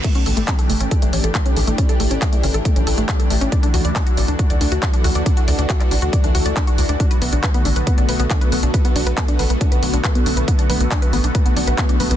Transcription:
<<
  \new Staff \with { instrumentName = "Synth arpeggio sound" } { \time 4/4 \key a \mixolydian \tempo 4 = 138 a16 cis'16 a'16 a16 cis'16 a'16 a16 cis'16 a'16 a16 cis'16 a'16 a16 cis'16 a'16 a16 | cis'16 a'16 a16 cis'16 a'16 a16 cis'16 a'16 a16 cis'16 a'16 a16 cis'16 a'16 a16 cis'16 | d''16 d'16 fis'16 d''16 d'16 fis'16 d''16 d'16 fis'16 d''16 d'16 fis'16 d''16 d'16 fis'16 d''16 | d'16 fis'16 d''16 d'16 fis'16 d''16 d'16 fis'16 d''16 d'16 fis'16 d''16 d'16 fis'16 d''16 d'16 |
d'16 b'16 b16 d'16 b'16 b16 d'16 b'16 b16 d'16 b'16 b16 d'16 b'16 b16 d'16 | b'16 b16 d'16 b'16 b16 d'16 b'16 b16 d'16 b'16 b16 d'16 b'16 b16 d'16 b'16 | b16 d'16 b'16 b16 d'16 b'16 b16 d'16 b'16 b16 d'16 b'16 b16 d'16 b'16 b16 | }
  \new Staff \with { instrumentName = "Analog synth bass" } { \clef bass \time 4/4 \key a \mixolydian r8 a,,16 a,,16 r8 g,,16 a,,16 r16 a,,16 a,,16 a,,16 r8 a,,16 a,,16 | r8 a,,16 a,,16 r8 g,,16 a,,16 r16 a,,16 a,,16 a,,16 r8 a,,16 a,,16 | r8 d,16 d,16 r8 a,,16 d,16 r16 d,16 d,16 d,16 r8 d,16 d,16 | r8 d,16 d,16 r8 a,,16 d,16 r16 d,16 d,16 d,16 r8 d,16 d,16 |
r8 b,,16 b,,16 r8 a,,16 b,,16 r16 b,,16 b,,16 b,,16 r8 b,,16 b,,16 | r8 b,,16 b,,16 r8 a,,16 b,,16 r16 b,,16 b,,16 b,,16 r8 b,,16 b,,16 | r8 b,,16 b,,16 r8 a,,16 b,,16 r16 b,,16 b,,16 b,,16 r8 b,,16 b,,16 | }
  \new DrumStaff \with { instrumentName = "Drums" } \drummode { \time 4/4 <cymc hh bd>16 hh16 hho16 hh16 <hc hh bd>16 hh16 hho16 hh16 <hh bd>16 hh16 hho16 hh16 <hc hh bd>16 hh16 hho16 hh16 | <hh bd>16 hh16 hho16 hh16 <hc hh bd>16 hh16 hho16 hh16 <hh bd>16 hh16 hho16 hh16 <hc hh bd>16 hh16 hho16 hh16 | <hh bd>16 hh16 hho16 hh16 <hc hh bd>16 hh16 hho16 hh16 <hh bd>16 hh16 hho16 hh16 <hc hh bd>16 hh16 hho16 hh16 | <hh bd>16 hh16 hho16 hh16 <hc hh bd>16 <hc hh>16 hho16 hh16 <hh bd>16 hh16 hho16 hh16 <hc hh bd>16 hh16 hho16 hh16 |
<hh bd>16 hh16 hho16 hh16 <hc hh bd>16 hh16 hho16 hh16 <hh bd>16 hh16 hho16 hh16 <hc hh bd>16 hh16 hho16 hh16 | <hh bd>16 hh16 hho16 hh16 <hc hh bd>16 hh16 hho16 hh16 <hh bd>16 hh16 hho16 hh16 <hc hh bd>16 hh16 hho16 hh16 | <hh bd>16 hh16 hho16 hh16 <hc hh bd>16 hh16 hho16 hh16 <hh bd>16 hh16 hho16 hh16 <hc hh bd>16 hh16 hho16 hh16 | }
>>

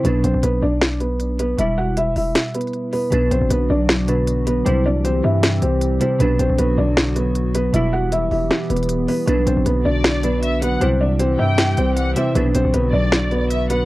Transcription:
<<
  \new Staff \with { instrumentName = "Violin section" } { \time 4/4 \key b \phrygian \tempo 4 = 156 r1 | r1 | r1 | r1 |
r1 | r1 | r4. d''4. e''8 fis''8 | r4. g''4. fis''8 e''8 |
r4. d''4. e''8 fis''8 | }
  \new Staff \with { instrumentName = "Felt piano" } { \time 4/4 \key b \phrygian <b b'>8 <c' c''>8 <b b'>8 <d' d''>4 <b b'>4 <b b'>8 | <e' e''>8 <fis' fis''>8 <e' e''>8 <e' e''>4 <b b'>4 <b b'>8 | <b b'>8 <c' c''>8 <b b'>8 <d' d''>4 <b b'>4 <b b'>8 | <c' c''>8 <d' d''>8 <c' c''>8 <e' e''>4 <c' c''>4 <c' c''>8 |
<b b'>8 <c' c''>8 <b b'>8 <d' d''>4 <b b'>4 <b b'>8 | <e' e''>8 <fis' fis''>8 <e' e''>8 <e' e''>4 <b b'>4 <b b'>8 | <b b'>8 <c' c''>8 <b b'>8 <d' d''>4 <b b'>4 <b b'>8 | <c' c''>8 <d' d''>8 <c' c''>8 <e' e''>4 <c' c''>4 <c' c''>8 |
<b b'>8 <c' c''>8 <b b'>8 <d' d''>4 <b b'>4 <b b'>8 | }
  \new Staff \with { instrumentName = "Ambient pad" } { \clef bass \time 4/4 \key b \phrygian << { r1 | r1 | <d fis fis'>1 | <e g g'>1 |
<d fis fis'>1 | <e g g'>1 | <d fis fis'>1 | <e g g'>1 |
<d fis fis'>1 | } \\ { r1 | r1 | b1 | c'1 |
b1~ | b1~ | b1 | c'1 |
b1 | } >> }
  \new Staff \with { instrumentName = "Synth keys" } { \clef bass \time 4/4 \key b \phrygian <b, fis d'>1 | <b, g e'>1 | <b, fis d'>2~ <b, fis d'>8 <b, fis d'>4. | <c g e'>2.~ <c g e'>8 <c g e'>8 |
<b, fis d'>1 | <b, g e'>1 | <b, fis d'>2~ <b, fis d'>8 <b, fis d'>4. | <c g e'>2.~ <c g e'>8 <c g e'>8 |
<b, fis d'>1 | }
  \new Staff \with { instrumentName = "808-style bass" } { \clef bass \time 4/4 \key b \phrygian b,,8 b,,16 b,,16 b,,8 b,,2~ b,,8 | e,,4. e,,8 r2 | b,,8 b,,16 a,,16 b,,8 b,,2~ b,,8 | c,4. g,4 c,4 r8 |
b,,8 b,,16 b,,16 b,,8 b,,2~ b,,8 | e,,4. e,,8 r8 e,,4 r8 | b,,8 b,,16 a,,16 b,,8 b,,2~ b,,8 | c,4. g,4 c,4 r8 |
b,,8 b,,16 b,,16 b,,8 b,,2~ b,,8 | }
  \new DrumStaff \with { instrumentName = "Drums" } \drummode { \time 4/4 hh8 hh8 hh4 sn8 hh8 hh8 hh8 | hh4 hh8 hho8 \tuplet 3/2 { <hh sn>16 r16 r16 hh16 hh16 hh16 } hh8 hho8 | hh8 hh8 hh4 sn8 hh8 hh8 hh8 | hh4 hh4 <hh sn>8 hh8 hh8 hh8 |
hh8 hh8 hh4 sn8 hh8 hh8 hh8 | hh4 hh8 hho8 \tuplet 3/2 { <hh sn>16 r16 r16 hh16 hh16 hh16 } hh8 hho8 | hh8 hh8 hh4 sn8 hh8 hh8 hh8 | hh4 hh4 <hh sn>8 hh8 hh8 hh8 |
hh8 hh8 hh4 sn8 hh8 hh8 hh8 | }
>>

